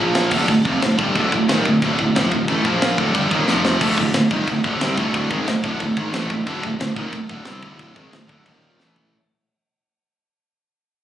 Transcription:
Already playing: A#2 F3
0.00 A#1 A#3
0.15 snare, crash
0.31 D1 D2 A2 D3, kick, crash
0.48 D1 D2 A2, kick, crash
0.65 F1 F2 C3 F3, kick
0.82 D1 D2 A2, snare, crash
0.98 G1 G2 D3 G3, kick
1.15 D1 D2 A2 D3, kick, crash
1.32 D1 D2 A2, kick
1.48 D#1 D#2 A#2 D#3, snare, crash
1.65 D1 D2 A2, kick
1.82 D1 D2 A2 D3, kick, crash
1.99 D1 D2 A2, kick
2.15 F1 F2 C3 F3, snare, crash
2.32 D1 D2 A2, kick
2.48 A1 A2 E3 A3, kick, crash
2.65 A#1 A#2 F3 A#3, kick
2.82 snare, crash
2.98 D1 D2 A2 D3, kick
3.14 G1 G2 D3 G3, kick, crash
3.31 D#1 D#2 A#2 D#3, kick
3.47 F1 F2 C3 F3, snare
3.65 snare
3.81 D1 D2 A2 D3, kick, crash
3.98 D1 D2 A2, kick
4.14 D1 D2 A2, snare, crash
4.31 D#1 D#2 A#2 D#3, kick
4.48 D1 D2 A2, kick, crash
4.64 D1 D2 A2 D3, kick
4.81 C2 C3 G3 C4, snare, crash
4.97 D1 D2 A2 D3, kick
5.14 kick, crash
5.30 G#1 G#2 D#3 G#3, kick
5.47 D1 D2 A2, snare, crash
5.63 D1 D2 A2 D3, kick
5.80 D1 D2 A2, kick, crash
5.97 G#1 G#2 D#3 G#3, kick
6.13 A1 A2 E3 A3, snare, crash
6.30 D1 D2 A2, kick
6.47 D1 D2 A2 D3, kick, crash
6.63 D1 D2 A2, kick
6.79 D1 D2 A2, snare, crash
6.96 D#1 D#2 A#2 D#3, kick
7.13 D1 D2 A2, kick, crash
7.29 D1 D2 A2 D3, kick
7.45 C2 C3 G3 C4, snare, crash
7.63 D1 D2 A2 D3, kick
7.79 kick, crash
7.95 G#1 G#2 D#3 G#3, kick
8.12 D1 D2 A2, snare, crash
8.28 D1 D2 A2 D3, kick
8.45 D#1 D#2 A#2 D#3, kick, crash
8.79 A1 A2 E3 A3, snare
8.96 floor tom

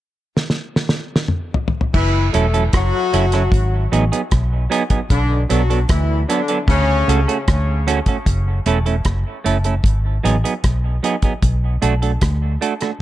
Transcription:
0.37 snare
0.50 snare
0.76 snare
0.89 snare
1.16 snare
1.28 mid tom
1.54 floor tom
1.68 floor tom
1.81 floor tom
1.94 F#1 E3 E4, kick, crash
2.33 E1 F#3 A3 C#4 E4 A4, closed hi-hat
2.54 F#3 C#4 E4 A4, closed hi-hat
2.73 F#1 F#3 F#4, kick, cross-stick, closed hi-hat
3.13 F#1 F#3 C#4 E4 A4, closed hi-hat
3.32 F#3 C#4 E4 A4, cross-stick, closed hi-hat
3.52 G#1, kick, closed hi-hat
3.92 A1 F#3 B3 D#4 G#4, closed hi-hat
4.12 F#3 B3 D#4 G#4, closed hi-hat
4.31 B1, kick, cross-stick, closed hi-hat
4.70 F#3 B3 D#4 G#4, closed hi-hat
4.90 F#3 B3 D#4 G#4, kick, closed hi-hat
5.10 B1 D3 D4, kick, closed hi-hat
5.50 B1 F#3 B3 D4 F#4 A4, closed hi-hat
5.70 F#3 B3 D4 A4, closed hi-hat
5.89 D2 E3 E4, kick, cross-stick, closed hi-hat
6.28 D3 F#3 B3 D4 A4, closed hi-hat
6.48 F#3 B3 D4 A4, closed hi-hat
6.68 D2 C#3 C#4, kick, closed hi-hat
7.08 C#2 A3 C#4 F#4 A4, closed hi-hat
7.28 A3 C#4 F#4 A4, closed hi-hat
7.48 D2, kick, cross-stick, closed hi-hat
7.87 A3 C#4 F#4 A4, closed hi-hat
8.06 A3 C#4 F#4 A4, kick, closed hi-hat
8.26 F#1, kick, closed hi-hat
8.66 E1 A3 C#4 E4 A4, closed hi-hat
8.86 A3 C#4 E4 A4, closed hi-hat
9.05 F#1, kick, cross-stick, closed hi-hat
9.44 F#1 A3 C#4 E4 A4, closed hi-hat
9.64 A3 C#4 E4 A4, closed hi-hat
9.84 G#1, kick, closed hi-hat
10.24 A1 F#3 B3 D#4 G#4, closed hi-hat
10.44 F#3 B3 D#4 G#4, closed hi-hat
10.64 B1, kick, cross-stick, closed hi-hat
11.03 F#3 B3 D#4 G#4, closed hi-hat
11.22 F#3 B3 D#4 G#4, kick, closed hi-hat
11.43 B1, kick, closed hi-hat
11.82 B1 A3 D4 F#4 A4, closed hi-hat
12.02 A3 D4 F#4 A4, closed hi-hat
12.21 D2, kick, cross-stick, closed hi-hat
12.61 A3 D4 F#4 A4, closed hi-hat
12.81 A3 D4 F#4 A4, cross-stick, closed hi-hat

